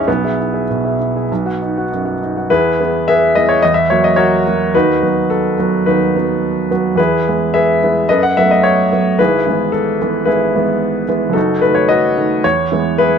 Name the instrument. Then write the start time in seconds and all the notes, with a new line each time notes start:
upright piano
0.08 B1 B3
0.24 G#4 E5
0.39 E4
0.54 G#4 E5
0.70 B2
0.85 G#4 E5
1.00 E4
1.16 G#4 E5
1.32 B1
1.45 F#4 F#5
1.62 D#4
1.78 F#4 F#5
1.92 F#2
2.05 F#4 F#5
2.22 D#4
2.36 F#4 F#5
2.50 E2 E4 G#4 B4
2.81 B3 E4 G#4
3.08 G#4 B4 E5
3.35 B3 E4 G#4 D#5
3.49 C#5
3.62 E2 D#5
3.74 E5
3.90 F#3 A#3 F#4 C#5
4.04 D#5
4.16 F#4 A#4 C#5
4.47 F#3 A#3 F#4
4.74 D#2 D#4 F#4 B4
5.02 F#3 B3 F#4
5.30 A4
5.59 F#3 B3 F#4
5.86 D#2 D#4 F#4 B4
6.16 F#3 B3 F#4
6.71 F#3 B3 F#4
6.96 E2 E4 G#4 B4
7.28 G#3 B3 E4
7.54 G#4 B4 E5
7.83 G#3 B3 E4
8.09 F#2 A4 B4 D#5
8.23 F#5
8.37 F#3 A3 B3 E5
8.51 D#5
8.63 C#5
8.92 F#3 A3 B3
9.19 G#1 E4 G#4 B4
9.47 E3 G#3 B3
9.72 A4
10.01 E3 G#3 B3
10.25 G#1 E4 G#4 B4
10.55 E3 G#3 B3
11.08 E3 G#3 B3
11.30 F#1 A4
11.35 D#4 F#4
11.61 D#3 A3 B4
11.75 C#5
11.89 F#4 A4 D#5
12.17 D#3 A3
12.44 E2 C#5
12.72 E3 G#3 B3
12.98 E4 G#4 B4